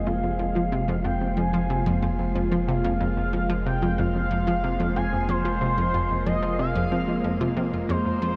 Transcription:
0.00 7.86 F1 medium
0.00 8.36 G#3 medium
0.00 8.36 A#3 medium
0.00 7.89 F4 medium
0.00 8.36 C5 medium
0.07 0.12 F2 loud
0.07 0.18 F4 medium
0.07 1.06 F5 loud
0.23 0.28 F2 medium
0.39 0.47 F2 medium
0.39 0.46 F3 medium
0.55 0.61 F3 medium
0.55 0.66 F4 medium
0.72 0.84 C3 loud
0.88 0.96 F2 loud
0.88 0.95 F3 loud
1.04 1.09 F2 loud
1.04 1.15 F4 medium
1.04 1.39 G5 loud
1.21 1.26 F2 medium
1.37 1.45 F2 medium
1.37 1.44 F3 loud
1.37 2.35 G#5 medium
1.53 1.58 F3 loud
1.53 1.64 F4 medium
1.70 1.82 C3 medium
1.86 1.94 F2 loud
1.86 1.93 F3 loud
2.02 2.07 F2 loud
2.02 2.13 F4 medium
2.19 2.24 F2 medium
2.35 2.43 F2 medium
2.35 2.42 F3 medium
2.52 2.56 F3 loud
2.52 2.62 F4 medium
2.68 2.80 C3 loud
2.68 3.67 F5 loud
2.84 2.92 F2 loud
2.84 2.91 F3 loud
3.00 3.05 F2 loud
3.00 3.11 F4 medium
3.17 3.22 F2 medium
3.33 3.41 F2 medium
3.33 3.40 F3 loud
3.49 3.54 F3 loud
3.49 3.60 F4 medium
3.66 3.78 C3 loud
3.66 4.00 G5 loud
3.82 3.90 F2 loud
3.82 3.89 F3 medium
3.98 4.03 F2 loud
3.98 4.09 F4 medium
3.98 4.97 F5 loud
4.15 4.19 F2 medium
4.31 4.39 F2 medium
4.31 4.37 F3 loud
4.47 4.52 F3 loud
4.47 4.58 F4 medium
4.64 4.75 C3 loud
4.80 4.88 F2 loud
4.80 4.86 F3 loud
4.96 5.01 F2 loud
4.96 5.07 F4 medium
4.96 5.30 G#5 loud
5.13 5.17 F2 medium
5.28 5.37 F2 medium
5.28 5.35 F3 loud
5.28 6.27 C5 loud
5.45 5.50 F3 loud
5.45 5.56 F4 medium
5.61 5.73 C3 loud
5.77 5.85 F2 medium
5.77 5.84 F3 medium
5.94 5.99 F2 loud
5.94 6.05 F4 medium
6.10 6.15 F2 medium
6.26 6.34 F2 medium
6.26 6.33 F3 loud
6.26 6.58 D#5 loud
6.43 6.47 F3 loud
6.43 6.54 F4 medium
6.59 6.71 C3 loud
6.59 7.53 F5 loud
6.75 6.83 F2 loud
6.75 6.82 F3 loud
6.92 7.00 F3 loud
6.92 7.03 C4 medium
7.08 7.16 F3 medium
7.24 7.36 F2 loud
7.24 7.40 F3 medium
7.41 7.48 C3 loud
7.41 7.56 F4 loud
7.57 7.65 C3 loud
7.57 7.64 F3 medium
7.73 7.78 F2 medium
7.73 7.89 F4 medium
7.89 8.36 F1 medium
7.89 7.94 F2 loud
7.89 8.00 G#3 loud
7.89 8.36 A#4 medium
7.89 8.36 C5 loud
8.05 8.10 F2 medium
8.22 8.30 F2 medium
8.22 8.29 F3 loud

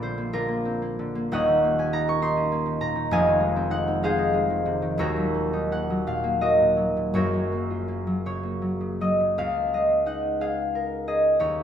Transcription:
0.00 1.35 A#1 medium
0.00 1.35 A#2 medium
0.00 0.32 D3 medium
0.00 1.19 F3 medium
0.00 1.35 A3 medium
0.00 0.16 A#3 medium
0.00 0.64 C4 medium
0.00 0.33 D4 medium
0.00 0.33 F4 medium
0.00 1.36 A4 medium
0.00 0.32 A#4 medium
0.00 1.36 C5 medium
0.00 1.35 D5 loud
0.00 1.35 F5 medium
0.18 0.47 A#3 medium
0.33 0.98 D3 medium
0.33 1.36 D4 medium
0.33 1.36 F4 medium
0.33 2.07 A#4 loud
0.48 0.81 A#3 medium
0.65 1.36 C4 medium
0.82 1.14 A#3 medium
0.99 1.36 D3 medium
1.15 1.63 A#3 medium
1.32 3.14 D#1 medium
1.32 3.15 D#2 medium
1.32 3.15 C#5 medium
1.32 3.12 D#5 medium
1.32 3.15 F#5 loud
1.48 2.65 D#3 medium
1.64 2.51 A#3 medium
1.79 2.36 C#4 medium
1.79 2.05 G#5 loud
1.93 2.21 D#4 medium
1.93 2.80 A#5 loud
2.08 3.14 A#4 medium
2.08 2.34 C#6 loud
2.22 3.70 D#4 medium
2.22 3.24 C6 loud
2.37 3.14 C#4 medium
2.52 3.14 A#3 medium
2.66 2.94 D#3 medium
2.80 3.14 A#2 medium
2.80 3.14 A#5 loud
2.96 3.14 D#3 medium
3.11 5.00 F1 medium
3.11 5.00 F2 loud
3.11 6.40 D#5 loud
3.11 4.02 F5 loud
3.11 5.00 G#5 loud
3.26 4.49 D#3 medium
3.40 4.02 G#3 medium
3.56 3.86 C4 medium
3.70 4.17 D#4 medium
3.70 4.24 F#5 loud
3.88 5.00 C4 medium
4.03 4.32 G#3 medium
4.03 5.01 G#4 loud
4.03 5.01 C5 loud
4.03 5.01 F5 loud
4.19 5.52 D#4 medium
4.33 5.00 G#3 medium
4.50 4.81 D#3 medium
4.66 5.01 C3 medium
4.82 5.01 D#3 medium
4.98 7.17 D#1 medium
4.98 7.17 D#2 loud
4.98 6.41 F#4 medium
4.98 6.41 A#4 loud
4.98 7.13 C#5 loud
5.16 5.89 F#3 medium
5.34 5.70 A#3 medium
5.53 7.17 D#4 medium
5.71 6.22 A#3 medium
5.71 9.42 F#5 medium
5.90 6.40 F#3 medium
6.07 6.59 A#2 medium
6.07 6.66 F5 loud
6.24 7.51 A#3 medium
6.41 6.75 F#3 medium
6.41 7.14 F#4 medium
6.41 7.15 A#4 medium
6.41 7.17 D#5 loud
6.61 6.96 A#2 medium
6.77 7.32 F#3 medium
6.97 7.17 A#2 medium
7.14 9.41 F#1 medium
7.14 9.41 F#2 medium
7.14 9.42 F#4 medium
7.14 10.74 A#4 medium
7.14 8.25 C#5 loud
7.34 8.06 F#3 medium
7.52 7.87 A#3 medium
7.70 11.60 F4 medium
7.88 8.42 A#3 medium
8.07 8.61 F#3 medium
8.26 8.79 C#3 medium
8.26 11.39 C#5 medium
8.43 11.63 A#3 medium
8.62 9.00 F#3 medium
8.81 9.19 C#3 soft
9.01 9.41 F#3 medium
9.01 9.63 D#5 medium
9.20 9.41 C#3 medium
9.38 11.42 C#2 medium
9.38 10.40 F5 loud
9.73 11.42 G#3 soft
9.73 11.06 D#5 medium
10.06 11.63 D#4 medium
10.06 10.65 F#5 medium
10.41 11.07 G#4 medium
10.41 11.63 F5 medium
10.75 11.63 A#4 medium
11.07 11.42 G#4 medium
11.07 11.63 D#5 medium
11.40 11.63 D#2 medium
11.40 11.63 C#5 loud

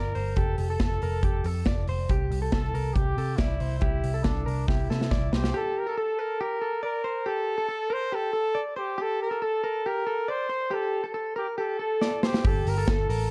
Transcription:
0.00 0.12 G1 medium
0.00 0.37 A#4 loud
0.00 0.15 D5 medium
0.15 0.33 G1 medium
0.15 0.37 C5 medium
0.15 open hi-hat medium
0.36 0.55 F1 medium
0.36 0.68 G4 medium
0.36 0.58 A4 loud
0.36 kick loud
0.36 closed hi-hat medium
0.58 0.76 F1 loud
0.58 1.84 A4 medium
0.58 open hi-hat medium
0.70 0.80 A4 medium
0.80 0.98 F1 loud
0.80 1.02 A4 medium
0.80 kick loud
0.80 snare loud
0.80 closed hi-hat medium
1.02 1.20 F1 medium
1.02 1.24 A#4 medium
1.02 open hi-hat medium
1.23 1.41 F1 medium
1.23 1.46 G4 medium
1.23 kick loud
1.23 closed hi-hat medium
1.44 1.62 F2 loud
1.44 1.67 A4 medium
1.44 open hi-hat medium
1.66 1.84 F1 medium
1.66 1.88 D5 medium
1.66 kick loud
1.66 snare loud
1.87 2.05 F1 medium
1.87 2.10 C5 medium
1.87 open hi-hat medium
2.09 2.27 C2 medium
2.09 2.41 G4 loud
2.09 kick loud
2.09 closed hi-hat medium
2.31 2.49 C2 loud
2.31 open hi-hat medium
2.42 2.52 A4 medium
2.52 2.71 C2 medium
2.52 2.95 A4 loud
2.52 2.74 A4 medium
2.52 kick medium
2.52 snare loud
2.52 closed hi-hat medium
2.74 2.92 C2 medium
2.74 2.96 A#4 medium
2.74 open hi-hat medium
2.94 3.14 C2 medium
2.94 3.38 G4 loud
2.94 3.18 G4 medium
2.94 kick loud
2.94 closed hi-hat medium
3.17 3.35 C3 medium
3.17 3.39 A4 medium
3.17 open hi-hat medium
3.36 3.57 C2 loud
3.36 3.78 E4 medium
3.36 3.60 D5 medium
3.36 kick loud
3.36 snare loud
3.36 closed hi-hat medium
3.60 3.79 C2 loud
3.60 3.82 C5 medium
3.60 open hi-hat medium
3.79 4.00 C2 medium
3.79 4.25 E4 medium
3.79 4.12 G4 medium
3.79 kick medium
3.79 closed hi-hat medium
4.04 4.22 C2 loud
4.04 open hi-hat medium
4.14 4.24 A4 medium
4.24 4.43 C2 loud
4.24 4.69 D4 medium
4.24 4.46 A4 medium
4.24 kick medium
4.24 snare loud
4.24 closed hi-hat medium
4.46 4.65 C2 medium
4.46 4.68 A#4 medium
4.46 open hi-hat medium
4.68 4.86 C2 medium
4.68 5.33 E4 medium
4.68 4.90 G4 medium
4.68 kick loud
4.68 snare medium
4.90 5.13 C3 medium
4.90 5.12 A4 medium
4.90 snare medium
5.01 snare medium
5.11 5.29 C2 loud
5.11 5.32 D5 medium
5.11 kick loud
5.11 snare medium
5.32 5.51 C2 medium
5.32 5.54 G4 medium
5.32 5.54 C5 medium
5.32 snare medium
5.44 snare medium
5.54 5.87 G4 loud
5.54 5.80 A4 loud
5.78 6.00 A#4 medium
5.87 5.96 A4 medium
5.97 6.19 A4 medium
5.97 6.43 A4 medium
6.19 6.40 A#4 medium
6.41 6.61 G4 medium
6.41 6.84 A#4 loud
6.62 6.83 A4 medium
6.83 7.28 A#4 loud
6.83 7.04 D5 medium
7.04 7.26 C5 medium
7.26 7.57 G4 loud
7.26 7.94 A4 loud
7.58 7.67 A4 medium
7.68 7.90 A4 medium
7.90 8.12 A#4 medium
7.90 8.16 C5 loud
8.12 8.33 G4 medium
8.12 8.61 A4 loud
8.33 8.55 A4 medium
8.55 8.76 D5 medium
8.76 9.03 G4 medium
8.76 8.98 C5 medium
8.98 9.29 G4 loud
8.98 9.21 A4 loud
9.22 9.45 A#4 loud
9.31 9.41 A4 medium
9.42 9.63 A4 medium
9.42 9.88 A4 loud
9.64 9.85 A#4 medium
9.86 10.06 G4 medium
9.86 10.31 A#4 loud
10.07 10.28 A4 medium
10.28 10.75 C5 loud
10.28 10.49 D5 medium
10.50 10.71 C5 medium
10.71 11.01 G4 loud
10.71 11.10 A4 medium
11.04 11.13 A4 medium
11.14 11.36 A4 medium
11.36 11.47 G4 medium
11.36 11.57 A#4 medium
11.58 11.79 G4 medium
11.58 12.27 A4 loud
11.79 12.01 A4 medium
12.01 12.23 D5 medium
12.01 snare medium
12.23 12.48 G4 medium
12.23 12.44 C5 medium
12.23 snare medium
12.34 snare loud
12.45 12.62 G1 loud
12.45 12.75 G4 loud
12.45 12.70 A4 loud
12.45 kick loud
12.45 open hi-hat medium
12.66 12.83 G1 loud
12.66 12.93 A#4 medium
12.66 hi-hat pedal medium
12.66 open hi-hat medium
12.78 12.87 A4 medium
12.87 13.05 G1 loud
12.87 13.31 A4 loud
12.87 kick loud
12.87 snare loud
12.87 hi-hat pedal medium
12.87 open hi-hat medium
13.09 13.27 A1 loud
13.09 13.30 A#4 medium
13.09 hi-hat pedal medium
13.09 open hi-hat medium

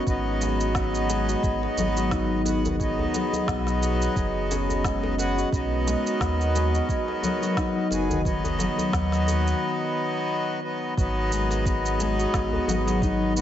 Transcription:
0.00 0.12 D#3 medium
0.00 0.12 F#3 medium
0.00 0.12 G#3 medium
0.00 0.75 B3 medium
0.00 1.94 C#4 medium
0.00 1.28 F#4 medium
0.00 5.49 F#4 medium
0.00 0.98 G#4 medium
0.00 5.49 D#5 medium
0.05 1.36 G#1 loud
0.05 2.41 F#3 medium
0.05 2.42 B3 medium
0.05 9.58 B3 medium
0.05 5.48 G#4 medium
0.05 kick loud
0.05 shaker soft
0.09 2.43 D#4 medium
0.41 1.08 G#3 medium
0.41 djembe slap medium
0.41 shaker medium
0.61 shaker soft
0.75 2.31 B3 medium
0.75 kick loud
0.75 snare loud
0.75 shaker soft
0.95 shaker soft
1.09 2.68 G#3 loud
1.09 djembe slap soft
1.09 shaker medium
1.29 1.97 F#4 medium
1.29 shaker soft
1.43 1.68 G#1 medium
1.43 2.80 G#4 medium
1.43 kick loud
1.43 shaker soft
1.63 djembe slap soft
1.77 3.06 G#1 medium
1.77 2.68 F#3 medium
1.77 djembe tone medium
1.77 shaker medium
1.97 2.99 F#4 medium
1.97 shaker soft
2.11 4.82 D#4 loud
2.11 kick loud
2.11 snare medium
2.11 shaker soft
2.31 3.48 B3 medium
2.44 2.75 F#3 medium
2.44 2.76 B3 medium
2.44 2.76 F#4 medium
2.44 djembe slap soft
2.44 shaker medium
2.65 5.57 D#3 medium
2.65 djembe bass medium
2.65 shaker soft
2.78 5.14 F#3 medium
2.78 5.15 B3 medium
2.78 4.16 G#4 medium
2.78 kick loud
2.78 shaker soft
2.82 5.16 D#4 medium
2.99 5.37 F#4 medium
2.99 djembe bass medium
3.14 5.57 F#3 medium
3.14 djembe slap medium
3.14 shaker medium
3.33 djembe tone medium
3.33 shaker soft
3.48 4.08 B1 loud
3.48 6.21 B3 medium
3.48 kick loud
3.48 snare loud
3.48 shaker soft
3.67 snare soft
3.67 shaker soft
3.82 djembe tone soft
3.82 shaker medium
4.02 shaker soft
4.16 5.45 F#1 medium
4.16 6.44 G#4 medium
4.16 kick loud
4.16 shaker soft
4.51 7.40 C#4 medium
4.51 djembe slap medium
4.51 shaker medium
4.69 djembe tone soft
4.69 shaker soft
4.84 5.57 G#3 medium
4.84 kick loud
4.84 snare medium
4.84 shaker soft
5.03 djembe slap medium
5.03 djembe tone medium
5.17 5.48 F#3 medium
5.17 5.49 B3 medium
5.17 5.49 F#4 medium
5.17 djembe slap medium
5.17 shaker medium
5.38 6.74 F#4 medium
5.38 shaker soft
5.51 5.96 B1 medium
5.51 7.86 F#3 medium
5.51 7.88 B3 medium
5.51 9.58 F#4 medium
5.51 9.58 A#4 medium
5.51 9.58 D#5 medium
5.51 kick loud
5.51 shaker soft
5.55 7.89 D#4 medium
5.87 6.54 G#3 medium
5.87 djembe slap medium
5.87 shaker medium
6.07 shaker soft
6.20 6.81 D#2 medium
6.20 7.76 B3 loud
6.20 kick loud
6.20 snare loud
6.20 shaker soft
6.41 shaker soft
6.55 8.13 G#3 medium
6.55 djembe slap soft
6.55 shaker medium
6.75 7.42 F#4 medium
6.75 shaker soft
6.89 8.26 G#4 medium
6.89 kick loud
6.89 shaker soft
7.08 djembe slap soft
7.23 8.13 F#3 medium
7.23 djembe tone medium
7.23 shaker medium
7.42 8.45 F#4 loud
7.42 shaker soft
7.57 10.28 D#4 loud
7.57 kick loud
7.57 snare medium
7.57 shaker soft
7.77 8.93 B3 medium
7.90 8.68 F#1 medium
7.90 8.21 F#3 medium
7.90 8.21 B3 medium
7.90 8.22 G#4 medium
7.90 djembe slap soft
7.90 shaker medium
8.10 11.03 D#3 medium
8.10 djembe bass medium
8.10 shaker soft
8.23 10.59 F#3 medium
8.23 10.60 B3 medium
8.23 10.54 G#4 medium
8.23 kick loud
8.23 shaker soft
8.27 10.61 D#4 loud
8.44 10.89 F#4 medium
8.44 djembe bass medium
8.44 shaker soft
8.59 11.03 F#3 medium
8.59 djembe slap medium
8.59 shaker medium
8.78 djembe tone medium
8.78 shaker soft
8.93 9.54 D#2 loud
8.93 11.66 B3 medium
8.93 kick medium
8.93 snare loud
8.93 shaker soft
9.12 snare soft
9.12 shaker soft
9.27 djembe slap soft
9.27 djembe tone soft
9.27 shaker medium
9.47 shaker soft
10.63 10.94 F#3 medium
10.63 10.94 B3 medium
10.63 10.95 D#4 medium
10.96 12.26 G#1 loud
10.96 13.32 F#3 medium
10.96 13.41 B3 medium
10.96 13.33 B3 medium
10.96 13.41 G#4 medium
10.96 13.41 A#4 medium
10.96 13.41 F#5 medium
10.96 kick loud
10.96 shaker soft
11.00 13.34 D#4 loud
11.32 11.99 G#3 medium
11.32 shaker medium
11.51 djembe slap medium
11.51 shaker soft
11.66 13.21 B3 loud
11.66 kick loud
11.66 shaker soft
11.86 shaker soft
12.00 13.41 G#3 medium
12.00 djembe slap medium
12.00 shaker medium
12.19 12.87 F#4 medium
12.19 shaker soft
12.34 12.58 G#1 medium
12.34 13.41 G#4 medium
12.34 kick loud
12.34 snare medium
12.34 djembe slap medium
12.34 shaker soft
12.53 djembe bass medium
12.68 13.41 G#1 medium
12.68 13.41 F#3 medium
12.68 djembe tone medium
12.68 shaker medium
12.87 13.41 F#4 medium
12.87 djembe slap medium
12.87 shaker soft
13.02 13.41 D#4 loud
13.02 kick loud
13.02 shaker soft
13.22 13.41 B3 medium
13.35 13.41 F#3 medium
13.35 13.41 B3 medium
13.35 13.41 F#4 medium
13.35 shaker medium

